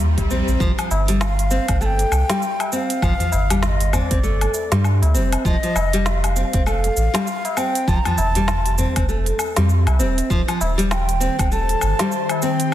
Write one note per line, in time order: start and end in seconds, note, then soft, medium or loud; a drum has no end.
0.00 0.17 D#2 medium
0.00 0.62 A#5 medium
0.00 swell medium
0.00 shaker soft
0.18 0.26 G1 medium
0.18 kick loud
0.18 open hi-hat soft
0.18 tabla na medium
0.18 tabla tin medium
0.18 tabla ge medium
0.18 shaker soft
0.30 0.42 A#1 loud
0.30 0.60 C4 medium
0.30 shaker medium
0.48 0.56 A#1 medium
0.48 tabla na soft
0.48 shaker soft
0.60 0.72 G1 medium
0.60 0.71 F3 medium
0.60 kick loud
0.60 shaker soft
0.78 0.90 F3 medium
0.78 open hi-hat soft
0.78 low woodblock medium
0.78 shaker soft
0.90 1.59 G1 medium
0.90 tabla na medium
0.90 tabla tin soft
0.90 shaker medium
1.08 1.20 G3 loud
1.08 open hi-hat medium
1.08 shaker soft
1.21 1.83 F5 loud
1.21 snare medium
1.21 low woodblock medium
1.21 shaker soft
1.39 open hi-hat soft
1.39 shaker soft
1.51 1.67 C4 medium
1.51 shaker medium
1.68 2.05 G1 loud
1.68 1.76 C4 medium
1.68 kick loud
1.68 open hi-hat medium
1.68 low woodblock medium
1.68 shaker soft
1.81 1.98 A3 medium
1.81 1.87 A5 loud
1.81 shaker soft
1.86 2.72 G5 loud
1.99 open hi-hat soft
1.99 shaker soft
2.12 2.23 C2 medium
2.12 low woodblock medium
2.12 shaker medium
2.29 2.41 G3 loud
2.29 snare medium
2.29 open hi-hat medium
2.29 shaker soft
2.42 shaker soft
2.59 open hi-hat soft
2.59 tabla na medium
2.59 tabla tin soft
2.59 low woodblock medium
2.59 shaker soft
2.72 3.02 C4 medium
2.72 3.63 F5 loud
2.72 2.77 G5 loud
2.72 shaker medium
2.90 open hi-hat medium
2.90 shaker soft
3.02 3.14 G1 medium
3.02 3.13 F3 loud
3.02 kick loud
3.02 low woodblock medium
3.02 shaker soft
3.20 3.32 F3 medium
3.20 open hi-hat soft
3.20 tabla ge loud
3.20 shaker soft
3.32 4.02 G1 medium
3.32 tabla na medium
3.32 tabla tin soft
3.32 shaker medium
3.50 3.63 G3 loud
3.50 open hi-hat medium
3.50 tabla ge medium
3.50 low woodblock medium
3.50 shaker soft
3.63 3.68 F5 medium
3.63 snare medium
3.63 shaker soft
3.67 3.93 D#5 medium
3.80 open hi-hat soft
3.80 shaker soft
3.93 4.10 C4 medium
3.93 3.98 D#5 medium
3.93 tabla ge medium
3.93 low woodblock medium
3.93 shaker medium
3.97 5.15 D5 loud
4.11 4.47 G1 medium
4.11 4.18 C4 medium
4.11 kick loud
4.11 open hi-hat medium
4.11 shaker soft
4.23 4.41 A3 medium
4.23 shaker soft
4.41 open hi-hat soft
4.41 low woodblock medium
4.41 shaker soft
4.54 tabla tin medium
4.54 shaker medium
4.72 5.02 G2 medium
4.72 4.84 G3 loud
4.72 snare medium
4.72 open hi-hat medium
4.72 shaker soft
4.84 low woodblock medium
4.84 shaker soft
5.02 5.16 D2 loud
5.02 open hi-hat soft
5.02 tabla na medium
5.02 shaker soft
5.14 5.36 F1 loud
5.14 5.44 C4 medium
5.14 shaker medium
5.32 open hi-hat medium
5.32 tabla tin medium
5.32 low woodblock medium
5.32 shaker soft
5.45 5.57 F1 loud
5.45 5.55 F3 loud
5.45 6.08 D#5 loud
5.45 kick loud
5.45 shaker soft
5.63 5.75 F3 medium
5.63 open hi-hat soft
5.63 shaker soft
5.75 6.44 F1 medium
5.75 tabla na medium
5.75 tabla tin soft
5.75 low woodblock medium
5.75 shaker medium
5.93 6.05 G3 loud
5.93 open hi-hat medium
5.93 shaker soft
6.06 6.66 F5 loud
6.06 snare medium
6.06 shaker soft
6.24 open hi-hat soft
6.24 low woodblock medium
6.24 shaker soft
6.36 6.52 C4 medium
6.36 shaker medium
6.53 6.90 F1 loud
6.53 6.61 C4 medium
6.53 kick loud
6.53 open hi-hat medium
6.53 shaker soft
6.66 6.83 A3 medium
6.66 7.59 F5 loud
6.66 low woodblock medium
6.66 shaker soft
6.84 open hi-hat soft
6.84 shaker soft
6.97 7.08 A1 medium
6.97 shaker medium
7.14 7.26 G3 loud
7.14 snare medium
7.14 open hi-hat medium
7.14 low woodblock medium
7.14 shaker soft
7.27 shaker soft
7.45 open hi-hat soft
7.45 tabla na medium
7.45 tabla tin soft
7.45 shaker soft
7.57 7.86 C4 medium
7.57 7.90 G5 loud
7.57 low woodblock medium
7.57 shaker medium
7.75 open hi-hat medium
7.75 shaker soft
7.88 7.99 F1 loud
7.88 7.98 F3 loud
7.88 7.97 A5 loud
7.88 kick loud
7.88 shaker soft
7.96 8.06 A#5 medium
8.05 8.17 F3 medium
8.05 9.09 A5 loud
8.05 open hi-hat soft
8.05 tabla ge loud
8.05 low woodblock medium
8.05 shaker soft
8.18 8.86 F1 loud
8.18 tabla na medium
8.18 tabla tin soft
8.18 shaker medium
8.35 8.48 G3 loud
8.35 open hi-hat medium
8.35 tabla ge loud
8.35 shaker soft
8.48 snare medium
8.48 low woodblock medium
8.48 shaker soft
8.66 open hi-hat soft
8.66 tabla tin soft
8.66 shaker soft
8.78 8.95 C4 medium
8.78 tabla ge medium
8.78 shaker medium
8.96 9.32 F1 medium
8.96 9.04 C4 medium
8.96 kick loud
8.96 open hi-hat medium
8.96 low woodblock medium
8.96 shaker soft
9.09 9.26 A3 medium
9.09 shaker soft
9.26 open hi-hat soft
9.26 shaker soft
9.39 tabla na soft
9.39 tabla tin soft
9.39 low woodblock medium
9.39 shaker medium
9.56 9.87 F2 medium
9.56 9.69 G3 loud
9.56 snare medium
9.56 open hi-hat medium
9.56 shaker soft
9.69 shaker soft
9.87 10.02 C2 loud
9.87 open hi-hat soft
9.87 tabla na medium
9.87 low woodblock medium
9.87 shaker soft
9.99 10.21 D#1 loud
9.99 10.29 C4 medium
9.99 shaker medium
10.18 open hi-hat medium
10.18 tabla tin medium
10.18 shaker soft
10.30 10.42 D#1 loud
10.30 12.74 D#3 medium
10.30 10.40 F3 loud
10.30 12.74 G4 medium
10.30 12.74 C5 medium
10.30 kick loud
10.30 shaker soft
10.48 10.60 F3 medium
10.48 open hi-hat soft
10.48 low woodblock medium
10.48 shaker soft
10.61 11.29 D#1 loud
10.61 tabla na medium
10.61 tabla tin soft
10.61 shaker medium
10.78 10.90 G3 loud
10.78 open hi-hat medium
10.78 shaker soft
10.91 11.53 G5 loud
10.91 snare medium
10.91 low woodblock medium
10.91 shaker soft
11.09 open hi-hat soft
11.09 shaker soft
11.20 11.37 C4 medium
11.20 shaker medium
11.39 11.75 D#1 medium
11.39 11.46 C4 medium
11.39 kick loud
11.39 open hi-hat medium
11.39 low woodblock medium
11.39 shaker soft
11.52 11.69 A3 medium
11.52 12.44 A5 loud
11.52 shaker soft
11.69 open hi-hat soft
11.69 shaker soft
11.81 11.94 G1 medium
11.81 low woodblock medium
11.81 shaker medium
11.99 12.12 G3 loud
11.99 snare medium
11.99 open hi-hat medium
11.99 shaker soft
12.12 shaker soft
12.29 open hi-hat soft
12.29 tabla na medium
12.29 tabla tin soft
12.29 low woodblock medium
12.29 shaker soft
12.42 12.72 C4 medium
12.42 12.74 G5 loud
12.42 shaker medium
12.60 open hi-hat medium
12.60 shaker soft